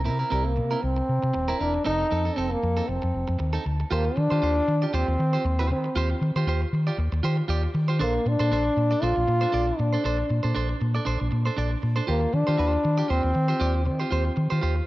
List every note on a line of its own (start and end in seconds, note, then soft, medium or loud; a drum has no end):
0.04 0.23 C3 loud
0.04 0.19 C4 medium
0.04 0.18 E4 medium
0.04 0.18 A#4 medium
0.19 0.29 C4 soft
0.19 0.30 E4 soft
0.19 0.31 A#4 medium
0.30 0.59 C2 medium
0.30 0.47 G3 medium
0.30 0.52 C4 medium
0.30 0.45 E4 medium
0.30 0.44 A#4 medium
0.45 0.84 A#3 medium
0.45 muted clean electric guitar stroke soft
0.56 0.74 C3 loud
0.56 muted clean electric guitar stroke soft
0.71 0.81 C4 soft
0.71 0.81 E4 medium
0.71 0.82 A#4 medium
0.82 1.00 C2 loud
0.82 1.62 C4 medium
0.82 muted clean electric guitar stroke soft
0.97 muted clean electric guitar stroke soft
1.09 1.18 C3 loud
1.23 1.30 C3 medium
1.23 muted clean electric guitar stroke soft
1.34 1.52 D#1 medium
1.34 muted clean electric guitar stroke soft
1.48 1.58 C4 medium
1.48 1.59 E4 medium
1.48 1.60 A#4 medium
1.60 1.77 E1 medium
1.60 1.78 C4 medium
1.60 1.85 D4 medium
1.60 1.74 E4 medium
1.60 1.73 A#4 medium
1.74 muted clean electric guitar stroke soft
1.85 2.03 F1 loud
1.85 2.06 C4 medium
1.85 2.07 D#4 medium
1.85 2.39 D#4 loud
1.85 2.07 A4 medium
2.11 2.29 F2 loud
2.11 2.26 C4 medium
2.11 2.25 D#4 medium
2.11 2.24 A4 medium
2.25 2.35 C4 soft
2.25 2.36 D#4 soft
2.25 2.37 A4 medium
2.36 2.54 F1 medium
2.36 2.58 C4 medium
2.36 2.53 C4 loud
2.36 2.51 D#4 medium
2.36 2.50 A4 medium
2.51 2.90 A#3 loud
2.51 muted clean electric guitar stroke soft
2.63 2.80 F2 loud
2.63 muted clean electric guitar stroke soft
2.77 2.87 C4 soft
2.77 2.87 D#4 medium
2.77 2.88 A4 medium
2.88 2.98 F1 loud
2.88 3.65 C4 medium
2.88 muted clean electric guitar stroke soft
3.02 3.11 F2 medium
3.02 muted clean electric guitar stroke soft
3.14 3.24 F1 loud
3.28 3.36 F2 medium
3.28 muted clean electric guitar stroke soft
3.39 3.57 D#2 medium
3.39 muted clean electric guitar stroke soft
3.53 3.64 C4 medium
3.53 3.65 D#4 medium
3.53 3.65 A4 medium
3.65 3.82 D2 medium
3.65 muted clean electric guitar stroke soft
3.80 muted clean electric guitar stroke soft
3.91 4.08 D#2 loud
3.91 4.19 A#3 loud
3.91 4.12 F4 medium
3.91 4.05 G4 medium
3.91 4.04 C5 medium
4.05 muted clean electric guitar stroke soft
4.16 4.26 D#3 loud
4.16 4.87 D4 loud
4.16 muted clean electric guitar stroke soft
4.30 4.39 D#3 medium
4.30 4.41 F4 medium
4.30 4.42 G4 medium
4.30 4.42 C5 medium
4.42 4.59 D#2 loud
4.42 4.63 F4 medium
4.42 4.56 G4 medium
4.42 4.55 C5 medium
4.56 muted clean electric guitar stroke soft
4.68 4.85 D#3 medium
4.68 muted clean electric guitar stroke soft
4.82 4.92 F4 medium
4.82 4.92 G4 medium
4.82 4.94 D5 medium
4.88 4.96 D4 medium
4.93 5.03 D#2 loud
4.93 5.71 C4 loud
4.93 5.14 F4 medium
4.93 5.08 G4 loud
4.93 5.07 C5 medium
5.08 5.15 D#2 loud
5.08 muted clean electric guitar stroke medium
5.19 5.36 D#3 loud
5.19 muted clean electric guitar stroke soft
5.33 5.44 F4 soft
5.33 5.44 G4 medium
5.33 5.45 C5 medium
5.45 5.72 D#2 loud
5.45 muted clean electric guitar stroke soft
5.59 5.69 F4 medium
5.59 5.70 G4 medium
5.59 5.71 C5 medium
5.71 5.87 D#3 medium
5.71 6.44 C4 medium
5.71 muted clean electric guitar stroke soft
5.84 muted clean electric guitar stroke soft
5.96 6.13 D#2 loud
5.96 6.17 F4 loud
5.96 6.10 G4 loud
5.96 6.09 C5 loud
6.10 muted clean electric guitar stroke medium
6.21 6.31 D#3 loud
6.21 muted clean electric guitar stroke soft
6.36 6.43 D#3 medium
6.36 6.46 F4 medium
6.36 6.47 G4 medium
6.36 6.48 C5 medium
6.47 6.64 D#2 loud
6.47 6.68 F4 medium
6.47 6.62 G4 medium
6.47 6.61 C5 medium
6.62 muted clean electric guitar stroke soft
6.73 6.89 D#3 medium
6.73 muted clean electric guitar stroke soft
6.87 6.97 F4 medium
6.87 6.98 G4 medium
6.87 6.99 D5 medium
6.98 7.07 D#2 loud
6.98 muted clean electric guitar stroke soft
7.12 7.20 D#2 loud
7.12 muted clean electric guitar stroke medium
7.23 7.40 D#3 loud
7.23 7.44 F4 medium
7.23 7.37 G4 medium
7.23 7.36 C5 medium
7.37 muted clean electric guitar stroke medium
7.48 7.66 D#2 loud
7.48 7.70 F4 medium
7.48 7.63 G4 loud
7.48 7.63 D5 medium
7.63 muted clean electric guitar stroke soft
7.74 8.02 D#3 medium
7.74 muted clean electric guitar stroke soft
7.88 7.99 F4 soft
7.88 8.00 G4 medium
7.88 8.00 C5 medium
7.99 8.17 A#1 loud
7.99 8.29 A#3 medium
7.99 8.21 D4 loud
7.99 8.14 A4 loud
7.99 8.14 C5 loud
8.15 muted clean electric guitar stroke soft
8.26 8.35 A#2 medium
8.26 9.04 D4 loud
8.26 muted clean electric guitar stroke soft
8.39 8.53 A#2 medium
8.39 8.50 D4 medium
8.39 8.51 A4 medium
8.39 8.52 C5 medium
8.51 8.68 A#1 loud
8.51 8.72 D4 medium
8.51 8.65 A4 medium
8.51 8.64 C5 medium
8.66 muted clean electric guitar stroke soft
8.77 8.94 A#2 medium
8.77 muted clean electric guitar stroke soft
8.91 9.01 D4 medium
8.91 9.02 A4 medium
8.91 9.03 D5 medium
9.02 9.12 A#1 loud
9.02 9.23 D4 medium
9.02 9.81 F4 loud
9.02 9.16 A4 medium
9.02 9.15 C5 loud
9.16 9.24 A#1 loud
9.16 muted clean electric guitar stroke soft
9.28 9.45 A#2 loud
9.28 muted clean electric guitar stroke soft
9.41 9.51 D4 medium
9.41 9.52 A4 medium
9.41 9.54 C5 medium
9.52 9.70 A#1 medium
9.52 9.74 D4 medium
9.52 9.68 A4 medium
9.52 9.67 D5 loud
9.68 muted clean electric guitar stroke soft
9.79 9.96 A#2 loud
9.79 10.56 D4 medium
9.79 muted clean electric guitar stroke soft
9.93 10.03 D4 soft
9.93 10.04 A4 medium
9.93 10.05 C5 medium
10.04 10.21 A#1 loud
10.04 10.25 D4 medium
10.04 10.19 A4 medium
10.04 10.17 C5 medium
10.18 muted clean electric guitar stroke soft
10.29 10.39 A#2 medium
10.29 muted clean electric guitar stroke soft
10.43 10.52 A#2 medium
10.43 10.53 D4 soft
10.43 10.54 A4 soft
10.43 10.55 C5 medium
10.55 10.72 A#1 loud
10.55 10.76 D4 medium
10.55 10.69 A4 medium
10.55 10.68 C5 medium
10.69 muted clean electric guitar stroke medium
10.80 10.98 A#2 loud
10.80 muted clean electric guitar stroke soft
10.95 11.04 D4 soft
10.95 11.05 A4 medium
10.95 11.06 D5 medium
11.05 11.16 A#1 medium
11.05 11.27 D4 medium
11.05 11.20 A4 medium
11.05 11.19 C5 medium
11.20 11.28 A#1 loud
11.20 muted clean electric guitar stroke medium
11.31 11.49 A#2 loud
11.31 muted clean electric guitar stroke medium
11.46 11.55 D4 soft
11.46 11.57 A4 medium
11.46 11.58 C5 medium
11.57 11.74 A#1 loud
11.57 11.78 D4 medium
11.57 11.71 A4 medium
11.57 11.71 D5 loud
11.71 muted clean electric guitar stroke soft
11.82 12.00 A#2 medium
11.82 muted clean electric guitar stroke soft
11.96 12.07 D4 soft
11.96 12.08 A4 medium
11.96 12.08 C5 medium
12.07 12.25 D#2 loud
12.07 12.35 A#3 medium
12.07 12.28 F4 medium
12.07 12.21 G4 loud
12.07 12.20 C5 medium
12.21 muted clean electric guitar stroke soft
12.33 12.43 D#3 loud
12.33 13.12 D4 loud
12.33 muted clean electric guitar stroke soft
12.47 12.55 D#3 medium
12.47 12.56 F4 medium
12.47 12.57 G4 medium
12.47 12.58 C5 medium
12.57 12.76 D#2 loud
12.57 12.79 F4 medium
12.57 12.73 G4 medium
12.57 12.72 C5 medium
12.73 muted clean electric guitar stroke soft
12.84 13.01 D#3 loud
12.84 muted clean electric guitar stroke soft
12.98 13.07 F4 soft
12.98 13.08 G4 medium
12.98 13.10 D5 medium
13.08 13.19 D#2 loud
13.08 13.86 C4 loud
13.08 13.30 F4 medium
13.08 13.23 G4 medium
13.08 13.22 C5 medium
13.23 13.31 D#2 loud
13.23 muted clean electric guitar stroke soft
13.34 13.52 D#3 loud
13.34 muted clean electric guitar stroke soft
13.48 13.58 F4 medium
13.48 13.59 G4 medium
13.48 13.61 C5 medium
13.60 13.88 D#2 loud
13.60 13.81 F4 loud
13.60 13.75 G4 medium
13.60 13.74 D5 loud
13.74 muted clean electric guitar stroke medium
13.85 14.03 D#3 medium
13.85 14.58 C4 medium
13.85 muted clean electric guitar stroke soft
14.00 14.09 F4 soft
14.00 14.11 G4 medium
14.00 14.11 C5 medium
14.11 14.28 D#2 loud
14.11 14.32 F4 medium
14.11 14.25 G4 medium
14.11 14.24 C5 loud
14.25 muted clean electric guitar stroke soft
14.36 14.46 D#3 loud
14.36 muted clean electric guitar stroke soft
14.50 14.59 D#3 loud
14.50 14.60 F4 medium
14.50 14.61 G4 medium
14.50 14.62 C5 medium
14.61 14.79 D#2 loud
14.61 14.83 F4 medium
14.61 14.76 G4 medium
14.61 14.75 C5 loud
14.76 muted clean electric guitar stroke soft